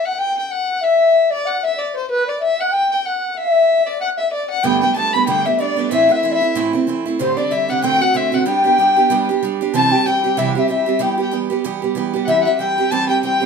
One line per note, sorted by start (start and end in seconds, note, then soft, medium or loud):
0.04 0.17 F#5 medium
0.04 0.20 F#5 medium
0.17 0.47 G5 medium
0.17 0.36 G5 medium
0.38 0.53 G5 medium
0.48 0.82 F#5 loud
0.48 0.84 F#5 medium
0.81 1.32 E5 loud
0.81 1.32 E5 medium
1.30 1.46 D5 loud
1.30 1.48 D5 medium
1.45 1.64 F#5 medium
1.63 1.75 E5 medium
1.63 1.80 E5 medium
1.75 1.95 D5 medium
1.75 1.96 D5 medium
1.94 2.08 C5 medium
1.94 2.09 C5 medium
2.09 2.26 B4 loud
2.09 2.30 B4 medium
2.26 2.39 D5 medium
2.26 2.42 D5 medium
2.40 2.57 E5 medium
2.40 2.62 E5 medium
2.58 2.73 F#5 loud
2.58 2.75 F#5 medium
2.71 3.03 G5 loud
2.71 2.91 G5 loud
2.92 3.07 G5 medium
3.04 3.34 F#5 medium
3.04 3.32 F#5 medium
3.32 3.39 F#5 medium
3.36 3.83 E5 loud
3.36 3.88 E5 medium
3.85 3.98 D5 medium
3.85 4.00 D5 medium
3.99 4.19 F#5 medium
3.99 4.09 F#5 medium
4.17 4.31 E5 medium
4.31 4.49 D5 medium
4.50 4.64 F#5 medium
4.50 4.65 F#5 medium
4.63 4.82 G2 medium
4.63 4.82 D3 medium
4.63 4.82 G3 medium
4.63 4.82 A3 medium
4.63 4.82 B3 medium
4.63 4.80 D4 medium
4.63 4.98 G5 loud
4.63 4.80 G5 medium
4.81 4.93 G3 soft
4.81 4.95 A3 soft
4.81 4.95 B3 soft
4.81 4.96 D4 soft
4.81 4.94 G5 medium
4.94 5.13 G3 medium
4.94 5.13 A3 medium
4.94 5.14 B3 medium
4.94 5.13 D4 medium
4.94 5.15 A5 medium
5.13 5.26 G3 soft
5.13 5.27 A3 soft
5.13 5.27 B3 soft
5.13 5.27 D4 medium
5.13 5.27 B5 medium
5.13 5.26 B5 loud
5.27 5.46 G2 medium
5.27 5.46 D3 medium
5.27 5.46 G3 medium
5.27 5.45 A3 medium
5.27 5.45 B3 medium
5.27 5.44 D4 medium
5.27 5.47 G5 loud
5.27 5.47 G5 medium
5.45 5.57 G3 soft
5.45 5.60 A3 soft
5.45 5.59 B3 soft
5.45 5.59 D4 soft
5.45 5.59 E5 medium
5.45 5.62 E5 medium
5.59 5.77 G3 medium
5.59 5.77 A3 medium
5.59 5.77 B3 soft
5.59 5.75 D4 medium
5.59 5.89 D5 medium
5.59 5.91 D5 medium
5.76 5.91 G3 soft
5.76 5.91 A3 medium
5.76 5.91 B3 soft
5.76 5.91 D4 medium
5.91 6.09 A2 medium
5.91 6.10 E3 medium
5.91 6.09 A3 medium
5.91 6.10 C4 medium
5.91 6.08 E4 medium
5.91 6.13 E5 loud
5.91 6.12 E5 medium
6.09 6.24 A3 medium
6.09 6.22 C4 soft
6.09 6.23 E4 medium
6.09 6.15 F#5 medium
6.13 6.33 E5 medium
6.13 6.33 E5 loud
6.23 6.41 E3 medium
6.23 6.42 A3 medium
6.23 6.42 C4 medium
6.23 6.40 E4 medium
6.31 6.36 D5 medium
6.31 6.55 E5 loud
6.31 6.54 E5 medium
6.41 6.56 A3 medium
6.41 6.55 C4 soft
6.41 6.55 E4 medium
6.55 6.73 A2 medium
6.55 6.74 E3 medium
6.55 6.73 A3 medium
6.55 6.74 C4 medium
6.55 6.72 E4 medium
6.73 6.87 A3 medium
6.73 6.87 C4 medium
6.73 6.87 E4 medium
6.87 7.05 E3 medium
6.87 7.06 A3 medium
6.87 7.06 C4 medium
6.87 7.04 E4 medium
7.06 7.20 A3 medium
7.06 7.20 C4 medium
7.06 7.19 E4 medium
7.19 7.37 D2 medium
7.19 7.37 A2 medium
7.19 7.38 D3 medium
7.19 7.37 G3 medium
7.19 7.37 C4 medium
7.19 7.36 D4 medium
7.19 7.38 C5 medium
7.19 7.36 C5 loud
7.37 7.50 D3 soft
7.37 7.51 G3 soft
7.37 7.51 C4 soft
7.37 7.51 D4 medium
7.37 7.53 D5 medium
7.37 7.50 D5 medium
7.51 7.69 D3 medium
7.51 7.69 G3 medium
7.51 7.69 C4 medium
7.51 7.67 D4 medium
7.51 7.68 E5 medium
7.51 7.71 E5 medium
7.69 7.82 D3 soft
7.69 7.84 G3 soft
7.69 7.83 C4 soft
7.69 7.83 D4 medium
7.69 7.83 F#5 medium
7.69 7.85 F#5 loud
7.82 8.01 D2 medium
7.82 8.01 A2 medium
7.82 8.01 D3 medium
7.82 8.00 A3 medium
7.82 8.02 C4 medium
7.82 7.99 F#4 medium
7.82 8.03 G5 loud
8.00 8.13 D3 soft
8.00 8.15 A3 medium
8.00 8.14 C4 soft
8.00 8.14 F#4 medium
8.00 8.18 F#5 medium
8.00 8.17 F#5 loud
8.14 8.32 D3 medium
8.14 8.32 A3 medium
8.14 8.32 C4 medium
8.14 8.31 F#4 medium
8.14 8.33 E5 loud
8.14 8.35 E5 medium
8.32 8.45 D3 medium
8.32 8.46 A3 medium
8.32 8.46 C4 medium
8.32 8.46 F#4 medium
8.32 8.49 F#5 loud
8.32 8.47 F#5 medium
8.46 8.64 G3 medium
8.46 8.64 B3 medium
8.46 8.64 D4 medium
8.46 8.63 G4 medium
8.46 9.42 G5 loud
8.46 9.38 G5 medium
8.64 8.78 B3 soft
8.64 8.79 D4 medium
8.64 8.78 G4 medium
8.78 8.96 G3 medium
8.78 8.97 B3 medium
8.78 8.96 D4 medium
8.78 8.95 G4 medium
8.97 9.10 B3 soft
8.97 9.10 D4 soft
8.97 9.10 G4 medium
9.10 9.28 G3 medium
9.10 9.29 B3 medium
9.10 9.29 D4 medium
9.10 9.28 G4 medium
9.29 9.42 B3 medium
9.29 9.43 D4 medium
9.29 9.42 G4 medium
9.43 9.60 G3 medium
9.43 9.61 B3 medium
9.43 9.61 D4 medium
9.43 9.60 G4 medium
9.61 9.74 B3 soft
9.61 9.75 D4 medium
9.61 9.74 G4 medium
9.74 9.92 C3 medium
9.74 9.92 E3 medium
9.74 9.92 G3 medium
9.74 9.92 C4 medium
9.74 9.90 G4 medium
9.74 9.93 A5 loud
9.74 10.08 A5 medium
9.91 10.06 G3 soft
9.91 10.06 C4 soft
9.91 10.05 G4 medium
9.91 10.05 G5 loud
10.05 10.24 E3 medium
10.05 10.24 G3 medium
10.05 10.24 C4 medium
10.05 10.23 G4 medium
10.05 10.39 G5 medium
10.24 10.37 G3 soft
10.24 10.37 C4 soft
10.24 10.37 G4 medium
10.37 10.55 C3 medium
10.37 10.56 E3 medium
10.37 10.56 G3 medium
10.37 10.55 C4 medium
10.37 10.54 G4 loud
10.37 10.50 E5 medium
10.37 10.48 E5 medium
10.48 10.60 F#5 medium
10.55 10.68 G3 soft
10.55 10.69 C4 medium
10.55 10.69 G4 medium
10.55 10.69 E5 loud
10.59 10.69 E5 medium
10.68 10.87 E3 medium
10.68 10.87 G3 medium
10.68 10.86 C4 medium
10.68 10.85 G4 medium
10.68 11.03 E5 loud
10.68 11.03 E5 medium
10.86 10.99 G3 medium
10.86 11.00 C4 medium
10.86 11.00 G4 medium
10.99 11.18 E3 medium
10.99 11.18 G3 medium
10.99 11.18 B3 medium
10.99 11.16 G4 medium
10.99 11.12 G5 medium
10.99 11.11 G5 loud
11.12 11.22 G5 medium
11.18 11.31 G3 soft
11.18 11.32 B3 soft
11.18 11.32 G4 medium
11.23 11.32 G5 medium
11.31 11.50 E3 medium
11.31 11.51 G3 medium
11.31 11.50 B3 medium
11.31 11.49 G4 medium
11.50 11.64 G3 soft
11.50 11.64 B3 medium
11.50 11.64 G4 medium
11.64 11.82 E3 medium
11.64 11.83 G3 medium
11.64 11.82 B3 loud
11.64 11.81 G4 medium
11.82 11.95 G3 soft
11.82 11.96 B3 soft
11.82 11.96 G4 medium
11.95 12.14 E3 medium
11.95 12.14 G3 medium
11.95 12.14 B3 medium
11.95 12.12 G4 medium
12.14 12.27 G3 medium
12.14 12.28 B3 medium
12.14 12.28 G4 medium
12.25 12.46 E3 medium
12.25 12.46 G3 medium
12.25 12.46 C4 medium
12.25 12.45 E5 loud
12.25 12.41 E5 medium
12.25 12.30 F#5 medium
12.29 12.44 G4 medium
12.41 12.47 F#5 medium
12.45 12.59 G3 soft
12.45 12.60 C4 soft
12.45 12.59 G4 soft
12.45 12.61 E5 medium
12.45 12.58 E5 medium
12.59 12.77 E3 medium
12.59 12.78 G3 medium
12.59 12.78 C4 medium
12.59 12.77 G4 medium
12.59 12.93 G5 medium
12.78 12.91 G3 soft
12.78 12.91 C4 soft
12.78 12.92 G4 medium
12.91 13.10 E3 medium
12.91 13.10 G3 medium
12.91 13.09 C4 medium
12.91 13.08 G4 medium
12.91 13.08 A5 loud
12.91 13.11 A5 loud
13.09 13.22 G3 soft
13.09 13.23 C4 soft
13.09 13.23 G4 soft
13.09 13.22 G5 medium
13.09 13.23 G5 medium
13.23 13.41 E3 medium
13.23 13.42 G3 medium
13.23 13.40 C4 medium
13.23 13.39 G4 medium
13.23 13.46 G5 medium
13.23 13.46 G5 loud
13.40 13.46 G3 soft
13.40 13.46 C4 medium
13.40 13.46 G4 soft